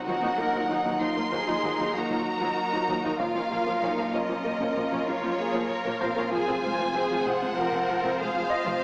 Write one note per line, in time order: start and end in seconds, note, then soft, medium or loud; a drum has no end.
0.00 3.16 D#4 soft
0.00 3.20 D#4 medium
0.00 0.10 D#5 soft
0.05 0.13 D#2 medium
0.05 0.16 D#3 medium
0.05 0.14 F3 medium
0.05 6.32 F#3 medium
0.05 0.14 F#3 medium
0.05 6.32 A#3 medium
0.05 0.38 F#4 medium
0.05 6.28 A#4 soft
0.05 3.20 D#5 medium
0.05 0.98 F#5 medium
0.22 0.29 D#2 soft
0.22 0.29 F3 soft
0.22 0.32 A#3 medium
0.22 0.29 D#4 soft
0.37 0.45 D#2 soft
0.37 0.45 F3 soft
0.37 0.47 A#3 medium
0.37 0.45 A#3 soft
0.37 0.70 A#4 medium
0.53 0.61 D#2 medium
0.53 0.63 D#3 medium
0.53 0.61 F3 soft
0.53 0.61 F#3 soft
0.69 0.76 D#2 soft
0.69 0.76 F3 soft
0.69 0.79 D#4 medium
0.69 0.76 D#4 soft
0.69 1.01 D#4 soft
0.85 0.92 D#2 medium
0.85 0.95 D#3 medium
0.85 0.92 F3 medium
0.85 0.92 F#3 medium
1.00 1.07 D#2 soft
1.00 1.07 F3 soft
1.00 1.10 D#4 medium
1.00 1.07 D#4 soft
1.00 1.32 F4 medium
1.00 1.95 C6 medium
1.16 1.23 D#2 soft
1.16 1.23 F3 soft
1.16 1.23 A#3 soft
1.16 1.26 A#3 soft
1.32 1.38 D#2 medium
1.32 1.41 D#3 medium
1.32 1.38 F3 medium
1.32 1.38 F#3 medium
1.32 1.95 G#4 medium
1.32 3.16 C5 soft
1.47 1.54 D#2 soft
1.47 1.54 F3 soft
1.47 1.57 F#3 medium
1.47 1.54 D#4 soft
1.63 1.70 D#2 medium
1.63 1.73 D#3 medium
1.63 1.70 F3 soft
1.63 1.70 F#3 medium
1.79 1.86 D#2 soft
1.79 1.86 F3 soft
1.79 1.88 F#3 medium
1.79 1.86 D#4 soft
1.94 2.01 D#2 soft
1.94 2.01 F3 soft
1.94 2.04 F#3 medium
1.94 2.01 A#3 soft
1.94 3.20 F#4 soft
1.94 3.20 A#5 medium
2.10 2.17 D#2 medium
2.10 2.20 D#3 medium
2.10 2.17 F3 medium
2.10 2.17 F#3 medium
2.41 2.48 D#2 medium
2.41 2.51 D#3 medium
2.41 2.48 F3 medium
2.41 2.48 F#3 medium
2.73 2.80 D#2 soft
2.73 2.80 F3 medium
2.73 2.80 A#3 soft
2.73 2.82 D#4 medium
2.88 2.95 D#2 medium
2.88 2.98 D#3 medium
2.88 2.95 F3 medium
2.88 2.95 F#3 medium
3.04 3.11 D#2 soft
3.04 3.11 F3 soft
3.04 3.13 D#4 medium
3.04 3.10 D#4 soft
3.19 3.26 A#1 medium
3.19 3.26 F3 medium
3.19 3.29 A#3 medium
3.19 8.84 F4 medium
3.19 3.81 F4 medium
3.19 6.33 A#4 medium
3.19 4.12 F5 medium
3.19 taiko medium
3.35 3.42 A#1 soft
3.35 3.41 F3 soft
3.35 3.41 C#4 soft
3.35 3.45 F4 soft
3.51 3.57 A#1 soft
3.51 3.57 F3 soft
3.51 3.57 A#3 soft
3.51 3.60 F4 medium
3.51 5.35 F4 soft
3.51 5.35 F5 soft
3.66 3.73 A#1 medium
3.66 3.73 F3 medium
3.66 3.76 A#3 medium
3.82 3.88 A#1 soft
3.82 3.88 F3 soft
3.82 3.89 C#4 soft
3.82 4.14 D#4 medium
3.82 3.92 A#4 medium
3.97 4.04 A#1 medium
3.97 4.04 F3 medium
3.97 4.07 A#3 medium
4.13 4.20 A#1 soft
4.13 4.20 F3 soft
4.13 4.20 C#4 soft
4.13 5.08 C#4 medium
4.13 4.23 A#4 medium
4.13 5.07 D#5 medium
4.29 4.35 A#1 soft
4.29 4.35 F3 soft
4.29 4.35 A#3 soft
4.29 4.39 F4 medium
4.44 4.51 A#1 medium
4.44 4.51 F3 medium
4.44 4.54 A#3 medium
4.60 4.66 A#1 soft
4.60 4.67 F3 soft
4.60 4.70 C#4 soft
4.60 4.67 C#4 soft
4.76 4.82 A#1 medium
4.76 4.83 F3 medium
4.76 4.86 A#3 medium
4.92 4.98 A#1 soft
4.92 4.98 F3 soft
4.92 5.01 C#4 medium
4.92 4.98 C#4 soft
5.07 5.14 A#1 soft
5.07 5.14 F3 soft
5.07 5.14 A#3 soft
5.07 5.17 C#4 medium
5.07 5.39 F4 medium
5.07 6.01 C#5 medium
5.23 5.29 A#1 medium
5.23 5.30 F3 medium
5.23 5.32 A#3 medium
5.39 5.70 G#4 medium
5.54 5.61 A#1 medium
5.54 5.61 F3 medium
5.54 5.64 A#3 medium
5.70 6.33 A#4 medium
5.86 5.92 A#1 soft
5.86 5.92 F3 medium
5.86 5.92 A#3 soft
5.86 5.95 A#4 medium
6.00 6.08 A#1 medium
6.00 6.08 F3 medium
6.00 6.10 A#3 medium
6.00 7.85 C4 soft
6.00 7.85 C5 medium
6.00 6.32 F5 medium
6.16 6.23 A#1 soft
6.16 6.23 F3 soft
6.16 6.24 C#4 medium
6.16 6.26 A#4 medium
6.31 6.39 F1 medium
6.31 8.84 F3 medium
6.31 6.41 F3 medium
6.31 6.39 F3 medium
6.31 8.84 C4 medium
6.31 6.63 G#4 medium
6.31 8.84 C5 medium
6.31 7.24 G#5 medium
6.48 6.55 F1 soft
6.48 6.55 F3 soft
6.48 6.57 C4 medium
6.48 6.55 C4 soft
6.64 6.70 F1 soft
6.64 6.71 F3 soft
6.64 6.70 G#3 soft
6.64 6.73 C4 medium
6.64 6.95 F4 medium
6.78 6.85 F1 medium
6.78 6.89 F3 medium
6.78 6.86 F3 medium
6.94 7.00 F1 soft
6.94 7.01 F3 soft
6.94 7.01 C4 soft
6.94 7.05 F4 medium
6.94 7.56 G#4 medium
7.10 7.16 F1 medium
7.10 7.20 F3 medium
7.10 7.17 F3 medium
7.25 7.32 F1 soft
7.25 7.33 F3 soft
7.25 7.33 C4 soft
7.25 7.36 F4 medium
7.25 8.19 F#5 medium
7.41 7.48 F1 soft
7.41 7.49 F3 soft
7.41 7.49 G#3 soft
7.41 7.52 C4 medium
7.57 7.64 F1 medium
7.57 7.67 F3 medium
7.57 7.65 F3 medium
7.57 8.19 A#4 medium
7.72 7.79 F1 soft
7.72 7.80 F3 soft
7.72 7.83 G#3 medium
7.72 7.80 C4 soft
7.88 7.94 F1 medium
7.88 7.95 F3 medium
7.88 7.98 F3 medium
8.04 8.10 F1 soft
8.04 8.11 F3 soft
8.04 8.13 G#3 medium
8.04 8.11 C4 medium
8.19 8.26 F1 soft
8.19 8.27 F3 medium
8.19 8.29 G#3 medium
8.19 8.27 G#3 soft
8.19 8.51 G#4 medium
8.19 8.84 F5 medium
8.35 8.41 F1 medium
8.35 8.44 F3 medium
8.35 8.42 F3 medium
8.50 8.84 F4 medium
8.50 8.84 D#5 medium
8.66 8.72 F1 medium
8.66 8.76 F3 medium
8.66 8.73 F3 medium